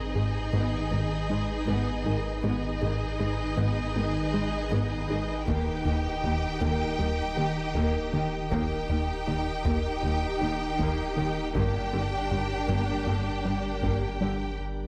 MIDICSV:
0, 0, Header, 1, 10, 480
1, 0, Start_track
1, 0, Tempo, 759494
1, 1540, Time_signature, 4, 2, 24, 8
1, 9398, End_track
2, 0, Start_track
2, 0, Title_t, "Violin section"
2, 0, Program_c, 0, 48
2, 0, Note_on_c, 0, 68, 44
2, 0, Note_on_c, 0, 75, 38
2, 1515, Note_off_c, 0, 68, 0
2, 1515, Note_off_c, 0, 75, 0
2, 1541, Note_on_c, 0, 68, 47
2, 1543, Note_on_c, 0, 75, 48
2, 3435, Note_off_c, 0, 68, 0
2, 3436, Note_off_c, 0, 75, 0
2, 3457, Note_on_c, 0, 67, 51
2, 3460, Note_on_c, 0, 79, 52
2, 5353, Note_off_c, 0, 67, 0
2, 5371, Note_off_c, 0, 79, 0
2, 5376, Note_on_c, 0, 67, 50
2, 5379, Note_on_c, 0, 79, 52
2, 7273, Note_off_c, 0, 67, 0
2, 7274, Note_off_c, 0, 79, 0
2, 7299, Note_on_c, 0, 67, 51
2, 7302, Note_on_c, 0, 79, 50
2, 9194, Note_off_c, 0, 67, 0
2, 9196, Note_off_c, 0, 79, 0
2, 9398, End_track
3, 0, Start_track
3, 0, Title_t, "Ambient pad"
3, 0, Program_c, 1, 92
3, 0, Note_on_c, 1, 51, 61
3, 0, Note_on_c, 1, 63, 55
3, 0, Note_on_c, 1, 68, 53
3, 0, Note_on_c, 1, 71, 58
3, 1516, Note_off_c, 1, 51, 0
3, 1536, Note_off_c, 1, 63, 0
3, 1541, Note_off_c, 1, 68, 0
3, 1542, Note_off_c, 1, 71, 0
3, 1544, Note_on_c, 1, 63, 63
3, 1549, Note_on_c, 1, 51, 63
3, 1550, Note_on_c, 1, 68, 60
3, 1551, Note_on_c, 1, 71, 61
3, 3437, Note_off_c, 1, 63, 0
3, 3439, Note_off_c, 1, 51, 0
3, 3440, Note_off_c, 1, 68, 0
3, 3440, Note_off_c, 1, 71, 0
3, 3461, Note_on_c, 1, 70, 65
3, 3464, Note_on_c, 1, 51, 68
3, 3464, Note_on_c, 1, 63, 60
3, 3465, Note_on_c, 1, 67, 59
3, 5357, Note_off_c, 1, 51, 0
3, 5357, Note_off_c, 1, 63, 0
3, 5374, Note_off_c, 1, 70, 0
3, 5381, Note_off_c, 1, 67, 0
3, 5381, Note_on_c, 1, 70, 64
3, 5386, Note_on_c, 1, 51, 61
3, 5387, Note_on_c, 1, 63, 61
3, 5388, Note_on_c, 1, 67, 60
3, 7275, Note_off_c, 1, 70, 0
3, 7278, Note_off_c, 1, 51, 0
3, 7278, Note_off_c, 1, 63, 0
3, 7279, Note_off_c, 1, 67, 0
3, 7298, Note_on_c, 1, 62, 60
3, 7302, Note_on_c, 1, 55, 62
3, 7302, Note_on_c, 1, 67, 62
3, 7303, Note_on_c, 1, 70, 61
3, 9196, Note_off_c, 1, 67, 0
3, 9196, Note_off_c, 1, 70, 0
3, 9219, Note_off_c, 1, 62, 0
3, 9221, Note_off_c, 1, 55, 0
3, 9398, End_track
4, 0, Start_track
4, 0, Title_t, "Synth arpeggio sound"
4, 0, Program_c, 2, 84
4, 99, Note_on_c, 2, 68, 54
4, 243, Note_off_c, 2, 68, 0
4, 339, Note_on_c, 2, 56, 75
4, 483, Note_off_c, 2, 56, 0
4, 578, Note_on_c, 2, 59, 48
4, 723, Note_off_c, 2, 59, 0
4, 821, Note_on_c, 2, 63, 48
4, 965, Note_off_c, 2, 63, 0
4, 1059, Note_on_c, 2, 56, 71
4, 1204, Note_off_c, 2, 56, 0
4, 1301, Note_on_c, 2, 63, 47
4, 1445, Note_off_c, 2, 63, 0
4, 1543, Note_on_c, 2, 56, 74
4, 1686, Note_off_c, 2, 56, 0
4, 1779, Note_on_c, 2, 68, 65
4, 1923, Note_off_c, 2, 68, 0
4, 2020, Note_on_c, 2, 68, 51
4, 2164, Note_off_c, 2, 68, 0
4, 2260, Note_on_c, 2, 56, 78
4, 2404, Note_off_c, 2, 56, 0
4, 2504, Note_on_c, 2, 59, 57
4, 2647, Note_off_c, 2, 59, 0
4, 2742, Note_on_c, 2, 63, 48
4, 2885, Note_off_c, 2, 63, 0
4, 2983, Note_on_c, 2, 56, 77
4, 3126, Note_off_c, 2, 56, 0
4, 3223, Note_on_c, 2, 63, 50
4, 3366, Note_off_c, 2, 63, 0
4, 3461, Note_on_c, 2, 51, 76
4, 3605, Note_off_c, 2, 51, 0
4, 3702, Note_on_c, 2, 63, 60
4, 3845, Note_off_c, 2, 63, 0
4, 3941, Note_on_c, 2, 63, 53
4, 4085, Note_off_c, 2, 63, 0
4, 4177, Note_on_c, 2, 51, 77
4, 4322, Note_off_c, 2, 51, 0
4, 4417, Note_on_c, 2, 55, 55
4, 4562, Note_off_c, 2, 55, 0
4, 4659, Note_on_c, 2, 58, 53
4, 4804, Note_off_c, 2, 58, 0
4, 4896, Note_on_c, 2, 51, 77
4, 5041, Note_off_c, 2, 51, 0
4, 5138, Note_on_c, 2, 58, 46
4, 5282, Note_off_c, 2, 58, 0
4, 5382, Note_on_c, 2, 51, 77
4, 5525, Note_off_c, 2, 51, 0
4, 5622, Note_on_c, 2, 63, 58
4, 5765, Note_off_c, 2, 63, 0
4, 5861, Note_on_c, 2, 63, 56
4, 6005, Note_off_c, 2, 63, 0
4, 6098, Note_on_c, 2, 51, 81
4, 6243, Note_off_c, 2, 51, 0
4, 6337, Note_on_c, 2, 55, 48
4, 6482, Note_off_c, 2, 55, 0
4, 6578, Note_on_c, 2, 58, 55
4, 6723, Note_off_c, 2, 58, 0
4, 6821, Note_on_c, 2, 51, 68
4, 6965, Note_off_c, 2, 51, 0
4, 7063, Note_on_c, 2, 58, 53
4, 7206, Note_off_c, 2, 58, 0
4, 7300, Note_on_c, 2, 55, 74
4, 7444, Note_off_c, 2, 55, 0
4, 7542, Note_on_c, 2, 67, 62
4, 7685, Note_off_c, 2, 67, 0
4, 7782, Note_on_c, 2, 67, 51
4, 7925, Note_off_c, 2, 67, 0
4, 8022, Note_on_c, 2, 55, 81
4, 8165, Note_off_c, 2, 55, 0
4, 8265, Note_on_c, 2, 58, 51
4, 8407, Note_off_c, 2, 58, 0
4, 8501, Note_on_c, 2, 62, 51
4, 8645, Note_off_c, 2, 62, 0
4, 8745, Note_on_c, 2, 55, 72
4, 8888, Note_off_c, 2, 55, 0
4, 8986, Note_on_c, 2, 62, 53
4, 9128, Note_off_c, 2, 62, 0
4, 9398, End_track
5, 0, Start_track
5, 0, Title_t, "Viola section"
5, 0, Program_c, 3, 48
5, 0, Note_on_c, 3, 63, 47
5, 96, Note_on_c, 3, 56, 38
5, 147, Note_off_c, 3, 56, 0
5, 335, Note_on_c, 3, 59, 54
5, 560, Note_off_c, 3, 59, 0
5, 579, Note_on_c, 3, 51, 41
5, 630, Note_off_c, 3, 51, 0
5, 821, Note_on_c, 3, 56, 44
5, 871, Note_off_c, 3, 56, 0
5, 1055, Note_on_c, 3, 59, 56
5, 1280, Note_off_c, 3, 59, 0
5, 1297, Note_on_c, 3, 51, 49
5, 1347, Note_off_c, 3, 51, 0
5, 1513, Note_off_c, 3, 63, 0
5, 1533, Note_on_c, 3, 63, 50
5, 1535, Note_on_c, 3, 59, 53
5, 1761, Note_off_c, 3, 59, 0
5, 1787, Note_on_c, 3, 51, 38
5, 1838, Note_off_c, 3, 51, 0
5, 2017, Note_on_c, 3, 56, 47
5, 2068, Note_off_c, 3, 56, 0
5, 2250, Note_on_c, 3, 59, 58
5, 2478, Note_off_c, 3, 59, 0
5, 2493, Note_on_c, 3, 51, 40
5, 2543, Note_off_c, 3, 51, 0
5, 2732, Note_on_c, 3, 56, 49
5, 2783, Note_off_c, 3, 56, 0
5, 2981, Note_on_c, 3, 59, 67
5, 3204, Note_off_c, 3, 59, 0
5, 3220, Note_on_c, 3, 51, 50
5, 3270, Note_off_c, 3, 51, 0
5, 3431, Note_off_c, 3, 63, 0
5, 3464, Note_on_c, 3, 58, 58
5, 3466, Note_on_c, 3, 63, 53
5, 3685, Note_off_c, 3, 58, 0
5, 3702, Note_on_c, 3, 51, 47
5, 3752, Note_off_c, 3, 51, 0
5, 3943, Note_on_c, 3, 55, 45
5, 3994, Note_off_c, 3, 55, 0
5, 4179, Note_on_c, 3, 58, 52
5, 4403, Note_off_c, 3, 58, 0
5, 4417, Note_on_c, 3, 51, 53
5, 4468, Note_off_c, 3, 51, 0
5, 4662, Note_on_c, 3, 55, 51
5, 4712, Note_off_c, 3, 55, 0
5, 4900, Note_on_c, 3, 58, 65
5, 5123, Note_off_c, 3, 58, 0
5, 5145, Note_on_c, 3, 51, 50
5, 5195, Note_off_c, 3, 51, 0
5, 5358, Note_off_c, 3, 63, 0
5, 5375, Note_on_c, 3, 58, 65
5, 5377, Note_on_c, 3, 63, 53
5, 5601, Note_off_c, 3, 58, 0
5, 5619, Note_on_c, 3, 51, 47
5, 5669, Note_off_c, 3, 51, 0
5, 5863, Note_on_c, 3, 55, 44
5, 5914, Note_off_c, 3, 55, 0
5, 6099, Note_on_c, 3, 58, 56
5, 6323, Note_off_c, 3, 58, 0
5, 6342, Note_on_c, 3, 51, 39
5, 6392, Note_off_c, 3, 51, 0
5, 6579, Note_on_c, 3, 55, 41
5, 6629, Note_off_c, 3, 55, 0
5, 6814, Note_on_c, 3, 58, 68
5, 7040, Note_off_c, 3, 58, 0
5, 7054, Note_on_c, 3, 51, 49
5, 7105, Note_off_c, 3, 51, 0
5, 7273, Note_off_c, 3, 63, 0
5, 7290, Note_on_c, 3, 62, 56
5, 7291, Note_on_c, 3, 58, 64
5, 7518, Note_off_c, 3, 58, 0
5, 7529, Note_on_c, 3, 50, 42
5, 7580, Note_off_c, 3, 50, 0
5, 7778, Note_on_c, 3, 55, 33
5, 7829, Note_off_c, 3, 55, 0
5, 8015, Note_on_c, 3, 58, 53
5, 8241, Note_off_c, 3, 58, 0
5, 8254, Note_on_c, 3, 50, 40
5, 8305, Note_off_c, 3, 50, 0
5, 8493, Note_on_c, 3, 55, 35
5, 8544, Note_off_c, 3, 55, 0
5, 8735, Note_on_c, 3, 58, 51
5, 8960, Note_off_c, 3, 58, 0
5, 8978, Note_on_c, 3, 50, 40
5, 9029, Note_off_c, 3, 50, 0
5, 9215, Note_off_c, 3, 62, 0
5, 9398, End_track
6, 0, Start_track
6, 0, Title_t, "Analog synth bass"
6, 0, Program_c, 4, 38
6, 98, Note_on_c, 4, 44, 43
6, 243, Note_off_c, 4, 44, 0
6, 336, Note_on_c, 4, 44, 73
6, 481, Note_off_c, 4, 44, 0
6, 581, Note_on_c, 4, 44, 56
6, 725, Note_off_c, 4, 44, 0
6, 820, Note_on_c, 4, 56, 51
6, 964, Note_off_c, 4, 56, 0
6, 1062, Note_on_c, 4, 44, 70
6, 1205, Note_off_c, 4, 44, 0
6, 1303, Note_on_c, 4, 56, 48
6, 1446, Note_off_c, 4, 56, 0
6, 1542, Note_on_c, 4, 44, 67
6, 1685, Note_off_c, 4, 44, 0
6, 1782, Note_on_c, 4, 44, 55
6, 1925, Note_off_c, 4, 44, 0
6, 2024, Note_on_c, 4, 44, 49
6, 2167, Note_off_c, 4, 44, 0
6, 2261, Note_on_c, 4, 44, 75
6, 2404, Note_off_c, 4, 44, 0
6, 2502, Note_on_c, 4, 44, 59
6, 2645, Note_off_c, 4, 44, 0
6, 2742, Note_on_c, 4, 56, 54
6, 2885, Note_off_c, 4, 56, 0
6, 2981, Note_on_c, 4, 44, 79
6, 3125, Note_off_c, 4, 44, 0
6, 3224, Note_on_c, 4, 56, 55
6, 3367, Note_off_c, 4, 56, 0
6, 3462, Note_on_c, 4, 39, 69
6, 3606, Note_off_c, 4, 39, 0
6, 3700, Note_on_c, 4, 39, 59
6, 3844, Note_off_c, 4, 39, 0
6, 3942, Note_on_c, 4, 39, 51
6, 4085, Note_off_c, 4, 39, 0
6, 4179, Note_on_c, 4, 39, 86
6, 4323, Note_off_c, 4, 39, 0
6, 4420, Note_on_c, 4, 39, 62
6, 4564, Note_off_c, 4, 39, 0
6, 4659, Note_on_c, 4, 51, 47
6, 4803, Note_off_c, 4, 51, 0
6, 4898, Note_on_c, 4, 39, 70
6, 5042, Note_off_c, 4, 39, 0
6, 5141, Note_on_c, 4, 51, 58
6, 5285, Note_off_c, 4, 51, 0
6, 5380, Note_on_c, 4, 39, 68
6, 5524, Note_off_c, 4, 39, 0
6, 5621, Note_on_c, 4, 39, 60
6, 5765, Note_off_c, 4, 39, 0
6, 5864, Note_on_c, 4, 39, 45
6, 6007, Note_off_c, 4, 39, 0
6, 6102, Note_on_c, 4, 39, 80
6, 6246, Note_off_c, 4, 39, 0
6, 6342, Note_on_c, 4, 39, 57
6, 6485, Note_off_c, 4, 39, 0
6, 6581, Note_on_c, 4, 51, 49
6, 6724, Note_off_c, 4, 51, 0
6, 6819, Note_on_c, 4, 39, 77
6, 6963, Note_off_c, 4, 39, 0
6, 7057, Note_on_c, 4, 51, 50
6, 7202, Note_off_c, 4, 51, 0
6, 7300, Note_on_c, 4, 43, 70
6, 7444, Note_off_c, 4, 43, 0
6, 7542, Note_on_c, 4, 43, 58
6, 7685, Note_off_c, 4, 43, 0
6, 7782, Note_on_c, 4, 43, 52
6, 7925, Note_off_c, 4, 43, 0
6, 8020, Note_on_c, 4, 43, 75
6, 8164, Note_off_c, 4, 43, 0
6, 8258, Note_on_c, 4, 43, 57
6, 8403, Note_off_c, 4, 43, 0
6, 8501, Note_on_c, 4, 55, 47
6, 8645, Note_off_c, 4, 55, 0
6, 8740, Note_on_c, 4, 43, 66
6, 8884, Note_off_c, 4, 43, 0
6, 8980, Note_on_c, 4, 55, 52
6, 9124, Note_off_c, 4, 55, 0
6, 9398, End_track
7, 0, Start_track
7, 0, Title_t, "Cello section"
7, 0, Program_c, 5, 48
7, 100, Note_on_c, 5, 44, 35
7, 151, Note_off_c, 5, 44, 0
7, 338, Note_on_c, 5, 44, 53
7, 388, Note_off_c, 5, 44, 0
7, 579, Note_on_c, 5, 44, 39
7, 629, Note_off_c, 5, 44, 0
7, 820, Note_on_c, 5, 44, 42
7, 870, Note_off_c, 5, 44, 0
7, 1058, Note_on_c, 5, 44, 59
7, 1108, Note_off_c, 5, 44, 0
7, 1303, Note_on_c, 5, 44, 44
7, 1353, Note_off_c, 5, 44, 0
7, 1541, Note_on_c, 5, 44, 68
7, 1591, Note_off_c, 5, 44, 0
7, 1784, Note_on_c, 5, 44, 44
7, 1835, Note_off_c, 5, 44, 0
7, 2019, Note_on_c, 5, 44, 40
7, 2070, Note_off_c, 5, 44, 0
7, 2264, Note_on_c, 5, 44, 57
7, 2314, Note_off_c, 5, 44, 0
7, 2504, Note_on_c, 5, 44, 46
7, 2555, Note_off_c, 5, 44, 0
7, 2745, Note_on_c, 5, 44, 43
7, 2796, Note_off_c, 5, 44, 0
7, 2984, Note_on_c, 5, 44, 59
7, 3035, Note_off_c, 5, 44, 0
7, 3225, Note_on_c, 5, 44, 48
7, 3275, Note_off_c, 5, 44, 0
7, 3464, Note_on_c, 5, 39, 71
7, 3514, Note_off_c, 5, 39, 0
7, 3702, Note_on_c, 5, 39, 49
7, 3753, Note_off_c, 5, 39, 0
7, 3946, Note_on_c, 5, 39, 43
7, 3997, Note_off_c, 5, 39, 0
7, 4184, Note_on_c, 5, 39, 67
7, 4235, Note_off_c, 5, 39, 0
7, 4425, Note_on_c, 5, 39, 48
7, 4476, Note_off_c, 5, 39, 0
7, 4668, Note_on_c, 5, 39, 44
7, 4718, Note_off_c, 5, 39, 0
7, 4904, Note_on_c, 5, 39, 64
7, 4955, Note_off_c, 5, 39, 0
7, 5143, Note_on_c, 5, 39, 54
7, 5193, Note_off_c, 5, 39, 0
7, 5384, Note_on_c, 5, 39, 69
7, 5434, Note_off_c, 5, 39, 0
7, 5626, Note_on_c, 5, 39, 43
7, 5677, Note_off_c, 5, 39, 0
7, 5868, Note_on_c, 5, 39, 44
7, 5919, Note_off_c, 5, 39, 0
7, 6105, Note_on_c, 5, 39, 65
7, 6155, Note_off_c, 5, 39, 0
7, 6344, Note_on_c, 5, 39, 46
7, 6394, Note_off_c, 5, 39, 0
7, 6586, Note_on_c, 5, 39, 46
7, 6636, Note_off_c, 5, 39, 0
7, 6830, Note_on_c, 5, 39, 67
7, 6881, Note_off_c, 5, 39, 0
7, 7072, Note_on_c, 5, 39, 44
7, 7122, Note_off_c, 5, 39, 0
7, 7310, Note_on_c, 5, 43, 69
7, 7360, Note_off_c, 5, 43, 0
7, 7545, Note_on_c, 5, 43, 42
7, 7596, Note_off_c, 5, 43, 0
7, 7786, Note_on_c, 5, 43, 41
7, 7836, Note_off_c, 5, 43, 0
7, 8023, Note_on_c, 5, 43, 60
7, 8074, Note_off_c, 5, 43, 0
7, 8265, Note_on_c, 5, 43, 41
7, 8316, Note_off_c, 5, 43, 0
7, 8504, Note_on_c, 5, 43, 38
7, 8555, Note_off_c, 5, 43, 0
7, 8746, Note_on_c, 5, 43, 54
7, 8796, Note_off_c, 5, 43, 0
7, 8989, Note_on_c, 5, 43, 34
7, 9040, Note_off_c, 5, 43, 0
7, 9398, End_track
8, 0, Start_track
8, 0, Title_t, "Double bass section"
8, 0, Program_c, 6, 48
8, 100, Note_on_c, 6, 32, 36
8, 151, Note_off_c, 6, 32, 0
8, 339, Note_on_c, 6, 32, 54
8, 389, Note_off_c, 6, 32, 0
8, 581, Note_on_c, 6, 32, 42
8, 631, Note_off_c, 6, 32, 0
8, 818, Note_on_c, 6, 32, 41
8, 869, Note_off_c, 6, 32, 0
8, 1056, Note_on_c, 6, 32, 61
8, 1106, Note_off_c, 6, 32, 0
8, 1296, Note_on_c, 6, 32, 44
8, 1347, Note_off_c, 6, 32, 0
8, 1541, Note_on_c, 6, 32, 58
8, 1592, Note_off_c, 6, 32, 0
8, 1782, Note_on_c, 6, 32, 50
8, 1832, Note_off_c, 6, 32, 0
8, 2024, Note_on_c, 6, 32, 41
8, 2075, Note_off_c, 6, 32, 0
8, 2258, Note_on_c, 6, 32, 66
8, 2309, Note_off_c, 6, 32, 0
8, 2499, Note_on_c, 6, 32, 46
8, 2549, Note_off_c, 6, 32, 0
8, 2741, Note_on_c, 6, 32, 40
8, 2792, Note_off_c, 6, 32, 0
8, 2978, Note_on_c, 6, 32, 66
8, 3028, Note_off_c, 6, 32, 0
8, 3216, Note_on_c, 6, 32, 44
8, 3267, Note_off_c, 6, 32, 0
8, 3463, Note_on_c, 6, 39, 63
8, 3514, Note_off_c, 6, 39, 0
8, 3701, Note_on_c, 6, 39, 47
8, 3751, Note_off_c, 6, 39, 0
8, 3939, Note_on_c, 6, 39, 45
8, 3989, Note_off_c, 6, 39, 0
8, 4181, Note_on_c, 6, 39, 73
8, 4232, Note_off_c, 6, 39, 0
8, 4418, Note_on_c, 6, 39, 50
8, 4468, Note_off_c, 6, 39, 0
8, 4665, Note_on_c, 6, 39, 40
8, 4715, Note_off_c, 6, 39, 0
8, 4900, Note_on_c, 6, 39, 60
8, 4951, Note_off_c, 6, 39, 0
8, 5144, Note_on_c, 6, 39, 49
8, 5194, Note_off_c, 6, 39, 0
8, 5380, Note_on_c, 6, 39, 69
8, 5430, Note_off_c, 6, 39, 0
8, 5621, Note_on_c, 6, 39, 51
8, 5671, Note_off_c, 6, 39, 0
8, 5858, Note_on_c, 6, 39, 44
8, 5909, Note_off_c, 6, 39, 0
8, 6095, Note_on_c, 6, 39, 70
8, 6145, Note_off_c, 6, 39, 0
8, 6339, Note_on_c, 6, 39, 54
8, 6390, Note_off_c, 6, 39, 0
8, 6578, Note_on_c, 6, 39, 43
8, 6629, Note_off_c, 6, 39, 0
8, 6816, Note_on_c, 6, 39, 63
8, 6866, Note_off_c, 6, 39, 0
8, 7060, Note_on_c, 6, 39, 46
8, 7111, Note_off_c, 6, 39, 0
8, 7305, Note_on_c, 6, 31, 63
8, 7355, Note_off_c, 6, 31, 0
8, 7544, Note_on_c, 6, 31, 45
8, 7595, Note_off_c, 6, 31, 0
8, 7780, Note_on_c, 6, 31, 38
8, 7830, Note_off_c, 6, 31, 0
8, 8024, Note_on_c, 6, 31, 59
8, 8074, Note_off_c, 6, 31, 0
8, 8263, Note_on_c, 6, 31, 42
8, 8314, Note_off_c, 6, 31, 0
8, 8502, Note_on_c, 6, 31, 35
8, 8553, Note_off_c, 6, 31, 0
8, 8740, Note_on_c, 6, 31, 48
8, 8790, Note_off_c, 6, 31, 0
8, 8981, Note_on_c, 6, 31, 38
8, 9032, Note_off_c, 6, 31, 0
8, 9398, End_track
9, 0, Start_track
9, 0, Title_t, "Sub bass"
9, 0, Program_c, 7, 38
9, 0, Note_on_c, 7, 32, 61
9, 1539, Note_off_c, 7, 32, 0
9, 1543, Note_on_c, 7, 32, 61
9, 3461, Note_on_c, 7, 27, 58
9, 3470, Note_off_c, 7, 32, 0
9, 5375, Note_off_c, 7, 27, 0
9, 5379, Note_on_c, 7, 27, 66
9, 7304, Note_on_c, 7, 31, 60
9, 7314, Note_off_c, 7, 27, 0
9, 9218, Note_off_c, 7, 31, 0
9, 9222, Note_on_c, 7, 31, 61
9, 9398, Note_off_c, 7, 31, 0
9, 9398, End_track
10, 0, Start_track
10, 0, Title_t, "Taiko and cinematic ensemble drums"
10, 3463, Note_on_c, 9, 41, 57
10, 3526, Note_off_c, 9, 41, 0
10, 5383, Note_on_c, 9, 41, 92
10, 5446, Note_off_c, 9, 41, 0
10, 6102, Note_on_c, 9, 41, 70
10, 6165, Note_off_c, 9, 41, 0
10, 6822, Note_on_c, 9, 41, 69
10, 6885, Note_off_c, 9, 41, 0
10, 7302, Note_on_c, 9, 41, 83
10, 7366, Note_off_c, 9, 41, 0
10, 8022, Note_on_c, 9, 41, 61
10, 8085, Note_off_c, 9, 41, 0
10, 8740, Note_on_c, 9, 41, 68
10, 8804, Note_off_c, 9, 41, 0
10, 9398, End_track
0, 0, End_of_file